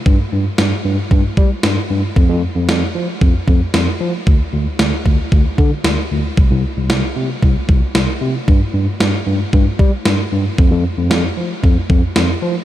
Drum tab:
SD |--o---o-|--o---o-|--o---o-|--o---o-|
BD |o---oo--|o---oo--|o--ooo--|o---oo--|

SD |--o---o-|--o---o-|
BD |o---oo--|o---oo--|